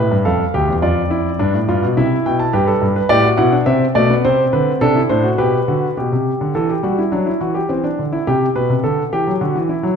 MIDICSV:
0, 0, Header, 1, 2, 480
1, 0, Start_track
1, 0, Key_signature, 0, "major"
1, 0, Tempo, 571973
1, 692, Time_signature, 3, 2, 24, 8
1, 8358, End_track
2, 0, Start_track
2, 0, Title_t, "Grand piano"
2, 0, Program_c, 0, 0
2, 0, Note_on_c, 0, 45, 64
2, 0, Note_on_c, 0, 71, 78
2, 0, Note_on_c, 0, 76, 69
2, 91, Note_off_c, 0, 45, 0
2, 96, Note_on_c, 0, 43, 64
2, 122, Note_off_c, 0, 71, 0
2, 199, Note_off_c, 0, 76, 0
2, 210, Note_off_c, 0, 43, 0
2, 210, Note_on_c, 0, 69, 70
2, 212, Note_on_c, 0, 77, 64
2, 214, Note_on_c, 0, 41, 58
2, 359, Note_off_c, 0, 69, 0
2, 362, Note_off_c, 0, 41, 0
2, 454, Note_on_c, 0, 67, 78
2, 455, Note_on_c, 0, 38, 61
2, 566, Note_on_c, 0, 40, 57
2, 570, Note_off_c, 0, 38, 0
2, 603, Note_off_c, 0, 67, 0
2, 678, Note_off_c, 0, 77, 0
2, 686, Note_off_c, 0, 40, 0
2, 691, Note_on_c, 0, 74, 63
2, 692, Note_on_c, 0, 41, 64
2, 692, Note_on_c, 0, 65, 78
2, 841, Note_off_c, 0, 65, 0
2, 927, Note_on_c, 0, 64, 75
2, 1077, Note_off_c, 0, 64, 0
2, 1158, Note_off_c, 0, 41, 0
2, 1170, Note_on_c, 0, 43, 69
2, 1171, Note_on_c, 0, 62, 83
2, 1287, Note_off_c, 0, 43, 0
2, 1292, Note_on_c, 0, 45, 55
2, 1319, Note_off_c, 0, 62, 0
2, 1407, Note_off_c, 0, 45, 0
2, 1415, Note_on_c, 0, 65, 78
2, 1416, Note_on_c, 0, 43, 65
2, 1528, Note_off_c, 0, 43, 0
2, 1532, Note_on_c, 0, 47, 67
2, 1561, Note_off_c, 0, 65, 0
2, 1618, Note_off_c, 0, 74, 0
2, 1646, Note_off_c, 0, 47, 0
2, 1654, Note_on_c, 0, 76, 70
2, 1655, Note_on_c, 0, 48, 64
2, 1655, Note_on_c, 0, 64, 82
2, 1799, Note_off_c, 0, 76, 0
2, 1800, Note_off_c, 0, 48, 0
2, 1895, Note_on_c, 0, 47, 67
2, 1897, Note_on_c, 0, 79, 65
2, 2006, Note_off_c, 0, 79, 0
2, 2010, Note_on_c, 0, 81, 70
2, 2040, Note_off_c, 0, 47, 0
2, 2113, Note_off_c, 0, 64, 0
2, 2122, Note_off_c, 0, 81, 0
2, 2126, Note_on_c, 0, 67, 77
2, 2127, Note_on_c, 0, 43, 64
2, 2127, Note_on_c, 0, 71, 72
2, 2240, Note_off_c, 0, 67, 0
2, 2243, Note_on_c, 0, 69, 68
2, 2274, Note_off_c, 0, 43, 0
2, 2362, Note_on_c, 0, 43, 64
2, 2390, Note_off_c, 0, 69, 0
2, 2471, Note_off_c, 0, 71, 0
2, 2484, Note_on_c, 0, 71, 70
2, 2509, Note_off_c, 0, 43, 0
2, 2596, Note_on_c, 0, 45, 75
2, 2596, Note_on_c, 0, 74, 99
2, 2597, Note_off_c, 0, 71, 0
2, 2598, Note_on_c, 0, 67, 76
2, 2714, Note_off_c, 0, 67, 0
2, 2715, Note_on_c, 0, 66, 67
2, 2744, Note_off_c, 0, 74, 0
2, 2745, Note_off_c, 0, 45, 0
2, 2832, Note_off_c, 0, 66, 0
2, 2832, Note_on_c, 0, 78, 88
2, 2834, Note_on_c, 0, 47, 80
2, 2834, Note_on_c, 0, 64, 78
2, 2952, Note_off_c, 0, 64, 0
2, 2953, Note_on_c, 0, 62, 71
2, 2982, Note_off_c, 0, 78, 0
2, 2984, Note_off_c, 0, 47, 0
2, 3071, Note_off_c, 0, 62, 0
2, 3072, Note_on_c, 0, 48, 69
2, 3072, Note_on_c, 0, 60, 70
2, 3072, Note_on_c, 0, 76, 82
2, 3223, Note_off_c, 0, 48, 0
2, 3223, Note_off_c, 0, 60, 0
2, 3223, Note_off_c, 0, 76, 0
2, 3316, Note_on_c, 0, 47, 78
2, 3316, Note_on_c, 0, 74, 84
2, 3318, Note_on_c, 0, 57, 63
2, 3435, Note_off_c, 0, 57, 0
2, 3440, Note_on_c, 0, 59, 70
2, 3466, Note_off_c, 0, 47, 0
2, 3466, Note_off_c, 0, 74, 0
2, 3556, Note_off_c, 0, 59, 0
2, 3563, Note_on_c, 0, 72, 90
2, 3564, Note_on_c, 0, 60, 70
2, 3566, Note_on_c, 0, 48, 71
2, 3711, Note_off_c, 0, 72, 0
2, 3712, Note_off_c, 0, 48, 0
2, 3800, Note_on_c, 0, 71, 77
2, 3801, Note_on_c, 0, 50, 70
2, 3948, Note_off_c, 0, 71, 0
2, 3949, Note_off_c, 0, 50, 0
2, 4027, Note_off_c, 0, 60, 0
2, 4038, Note_on_c, 0, 48, 75
2, 4038, Note_on_c, 0, 62, 76
2, 4038, Note_on_c, 0, 69, 92
2, 4155, Note_off_c, 0, 62, 0
2, 4158, Note_on_c, 0, 64, 60
2, 4188, Note_off_c, 0, 48, 0
2, 4188, Note_off_c, 0, 69, 0
2, 4275, Note_on_c, 0, 45, 72
2, 4275, Note_on_c, 0, 62, 67
2, 4276, Note_off_c, 0, 64, 0
2, 4276, Note_on_c, 0, 72, 84
2, 4393, Note_on_c, 0, 66, 71
2, 4395, Note_off_c, 0, 62, 0
2, 4428, Note_off_c, 0, 45, 0
2, 4428, Note_off_c, 0, 72, 0
2, 4515, Note_off_c, 0, 66, 0
2, 4516, Note_on_c, 0, 71, 78
2, 4518, Note_on_c, 0, 67, 68
2, 4519, Note_on_c, 0, 47, 67
2, 4672, Note_off_c, 0, 67, 0
2, 4673, Note_off_c, 0, 47, 0
2, 4766, Note_on_c, 0, 50, 66
2, 4767, Note_on_c, 0, 66, 60
2, 4919, Note_off_c, 0, 50, 0
2, 4920, Note_off_c, 0, 66, 0
2, 4996, Note_off_c, 0, 71, 0
2, 5013, Note_on_c, 0, 67, 53
2, 5014, Note_on_c, 0, 47, 60
2, 5132, Note_off_c, 0, 47, 0
2, 5138, Note_on_c, 0, 48, 59
2, 5287, Note_off_c, 0, 48, 0
2, 5378, Note_on_c, 0, 50, 65
2, 5483, Note_off_c, 0, 67, 0
2, 5495, Note_off_c, 0, 50, 0
2, 5496, Note_on_c, 0, 52, 76
2, 5496, Note_on_c, 0, 69, 63
2, 5614, Note_off_c, 0, 69, 0
2, 5616, Note_on_c, 0, 67, 53
2, 5646, Note_off_c, 0, 52, 0
2, 5734, Note_off_c, 0, 67, 0
2, 5734, Note_on_c, 0, 55, 67
2, 5735, Note_on_c, 0, 66, 63
2, 5854, Note_off_c, 0, 66, 0
2, 5861, Note_on_c, 0, 64, 56
2, 5885, Note_off_c, 0, 55, 0
2, 5972, Note_on_c, 0, 62, 57
2, 5974, Note_on_c, 0, 54, 68
2, 5976, Note_off_c, 0, 64, 0
2, 6092, Note_off_c, 0, 62, 0
2, 6095, Note_on_c, 0, 64, 55
2, 6124, Note_off_c, 0, 54, 0
2, 6213, Note_off_c, 0, 64, 0
2, 6215, Note_on_c, 0, 52, 63
2, 6215, Note_on_c, 0, 66, 61
2, 6332, Note_on_c, 0, 67, 59
2, 6334, Note_off_c, 0, 66, 0
2, 6365, Note_off_c, 0, 52, 0
2, 6452, Note_off_c, 0, 67, 0
2, 6454, Note_on_c, 0, 60, 64
2, 6456, Note_on_c, 0, 52, 61
2, 6574, Note_off_c, 0, 60, 0
2, 6575, Note_on_c, 0, 62, 57
2, 6607, Note_off_c, 0, 52, 0
2, 6704, Note_on_c, 0, 50, 56
2, 6727, Note_off_c, 0, 62, 0
2, 6818, Note_on_c, 0, 64, 67
2, 6852, Note_off_c, 0, 50, 0
2, 6936, Note_off_c, 0, 64, 0
2, 6943, Note_on_c, 0, 48, 64
2, 6943, Note_on_c, 0, 67, 80
2, 7090, Note_off_c, 0, 48, 0
2, 7090, Note_off_c, 0, 67, 0
2, 7179, Note_on_c, 0, 47, 63
2, 7180, Note_on_c, 0, 71, 74
2, 7295, Note_off_c, 0, 47, 0
2, 7296, Note_on_c, 0, 48, 60
2, 7328, Note_off_c, 0, 71, 0
2, 7413, Note_off_c, 0, 48, 0
2, 7415, Note_on_c, 0, 50, 59
2, 7415, Note_on_c, 0, 69, 68
2, 7565, Note_off_c, 0, 50, 0
2, 7565, Note_off_c, 0, 69, 0
2, 7659, Note_on_c, 0, 67, 75
2, 7661, Note_on_c, 0, 52, 56
2, 7777, Note_off_c, 0, 52, 0
2, 7780, Note_on_c, 0, 54, 61
2, 7808, Note_off_c, 0, 67, 0
2, 7896, Note_off_c, 0, 54, 0
2, 7897, Note_on_c, 0, 50, 69
2, 7897, Note_on_c, 0, 66, 60
2, 8013, Note_off_c, 0, 50, 0
2, 8019, Note_on_c, 0, 52, 67
2, 8045, Note_off_c, 0, 66, 0
2, 8133, Note_on_c, 0, 64, 63
2, 8166, Note_off_c, 0, 52, 0
2, 8252, Note_on_c, 0, 54, 75
2, 8282, Note_off_c, 0, 64, 0
2, 8358, Note_off_c, 0, 54, 0
2, 8358, End_track
0, 0, End_of_file